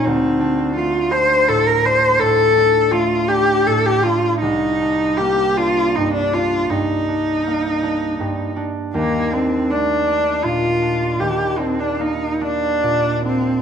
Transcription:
<<
  \new Staff \with { instrumentName = "Cello" } { \time 12/8 \key ees \lydian \tempo 4. = 53 c'4 f'8 c''8 a'16 bes'16 c''8 a'4 f'8 g'8 a'16 g'16 f'8 | ees'4 g'8 f'8 ees'16 d'16 f'8 ees'2~ ees'8 r8 | bes8 c'8 d'4 f'4 g'8 c'16 d'16 ees'8 d'4 c'8 | }
  \new Staff \with { instrumentName = "Harp" } { \time 12/8 \key ees \lydian d,8 d'8 a8 d'8 a,8 d'8 a,8 d'8 a8 d'8 a,8 d'8 | c,8 d'8 bes8 d'8 g,8 d'8 g,8 d'8 bes8 d'8 g,8 d'8 | ees,8 d'8 a8 d'8 bes,8 d'8 ees,8 d'8 bes8 d'8 bes,8 d'8 | }
>>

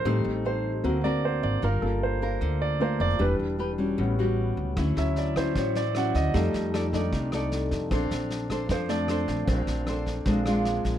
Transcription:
<<
  \new Staff \with { instrumentName = "Nylon-string guitar" } { \time 4/4 \key bes \major \tempo 4 = 153 << { <ees' g' c''>8 r8 <ees' g' c''>8 r8 <c' fis' ais'>8 <c' fis' ais'>4. | <d' f' bes'>4. <d' f' bes'>4. <d' f' bes'>4 | <d' g' b'>4 <d' g' b'>8 <g des' ges'>4 <g cis' fis'>4. | <fis cis' e'>4. <fis cis' e'>8 <fis cis' e'>8 r8 <fis cis' e'>4 |
<ees' a' d''>4 <ees' a' d''>8 <ees' a' d''>4 <ees' a' d''>4. | <d' a' c''>4. <d' a' c''>8 <d' a' c''>8 r8 <d' a' c''>4~ | <d' a' c''>4 <d' a' c''>8 r8 <aes d' f'>8 <aes d' f'>4. | } \\ { a2 d2 | g2 d2 | e2 a,2 | d2 a,2 |
f2 c2 | bes2 f2 | bes2 bes,2 | } >> }
  \new Staff \with { instrumentName = "Grand piano" } { \time 4/4 \key bes \major << { a'8 r8 c''4. d''8 c''8 d''8 | bes'8 r8 c''4. d''8 c''8 d''8 | b'8 r2. r8 | r8 e''8 d''8 c''8 cis''8 d''8 fis''8 ees''8~ |
ees''2 r2 | r2 c''8 d''8 r4 | r1 | } \\ { <g c' ees'>2 <ais c' fis'>2 | r8 <bes f' a'>2~ <bes f' a'>8 <a bes f'>8 r8 | <g d'>8 r4. <g b cis' fis'>2 | r8 <fis cis' e'>8 r2. |
<g a ees'>8 r4 <g a d' ees'>8 r2 | <c' d'>4. r4 <a c' d'>8 r4 | <c' d'>2 <aes c' d'>4. r8 | } >> }
  \new Staff \with { instrumentName = "Upright bass" } { \clef bass \time 4/4 \key bes \major a,,8 a,,4. d,4. aes,,8 | g,,8 g,,4. d,4. f,,8 | e,,8 e,,4. a,,4. cis,8 | d,8 d,4. a,,4. d,8 |
f,8 f,4. c,4. f,8 | bes,,8 bes,,4. f,4. bes,,8 | bes,,8 bes,,4. bes,,4. bes,,8 | }
  \new DrumStaff \with { instrumentName = "Drums" } \drummode { \time 4/4 r4 r4 r4 r4 | r4 r4 r4 r4 | r4 r4 r4 r4 | <bd ss sn>8 sn8 sn8 <bd ss sn>8 <bd sn>8 sn8 <ss sn>8 <bd sn>8 |
<bd sn>8 sn8 <ss sn>8 <bd sn>8 <bd sn>8 <ss sn>8 sn8 <bd sn>8 | <bd ss sn>8 sn8 sn8 <bd ss sn>8 <bd sn>8 sn8 <ss sn>8 <bd sn>8 | <bd sn>8 sn8 <ss sn>8 <bd sn>8 <bd sn>8 <ss sn>8 sn8 <bd sn>8 | }
>>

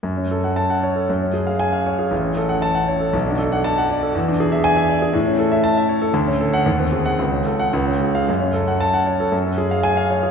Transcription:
\new Staff \with { instrumentName = "Grand piano" } { \time 2/4 \key fis \minor \tempo 4 = 116 << { r4 a''8 r8 | r4 gis''8 r8 | r4 a''8 r8 | r4 a''8 r8 |
r4 gis''8 r8 | r4 a''8 r8 | r8. fis''16 r8. fis''16 | r8. fis''16 r8. eis''16 |
r4 a''8 r8 | r4 gis''8 r8 | } \\ { fis,16 cis'16 a'16 fis''8 fis''16 cis''16 a'16 | fis,16 cis'16 gis'16 eis''8 eis''16 cis''16 gis'16 | a,,16 cis'16 a'16 fis''8 fis''16 cis''16 a'16 | b,,16 d'16 a'16 fis''8 fis''16 d''16 a'16 |
e,16 d'16 gis'16 e''8 e''16 d''16 gis'16 | a,16 cis'16 a'16 e''8 e''16 cis''16 a'16 | d,16 cis'16 a'8 dis,16 bis16 gis'8 | cis,16 cis'16 a'8 cis,16 cis'16 gis'8 |
fis,16 cis'16 a'16 fis''8 fis''16 cis''16 a'16 | fis,16 cis'16 gis'16 eis''8 eis''16 cis''16 gis'16 | } >> }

